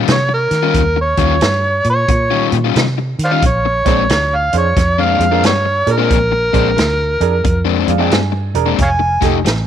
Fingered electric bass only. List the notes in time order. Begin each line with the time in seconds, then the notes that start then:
0.08 C3
0.51 D#3
0.74 D#2
1.18 D#2
1.41 G2
1.85 A#2
2.08 A#2
2.52 A#2
2.76 C3
3.19 D#3
3.42 A#1
3.86 A#1
4.10 D2
4.53 F2
4.77 F2
5.19 F2
5.43 G2
5.87 A#2
6.10 A#1
6.54 A#1
6.77 D2
7.20 F2
7.45 F2
7.88 F2
8.11 G2
8.54 E1
8.79 F1
9.22 F1
9.46 A1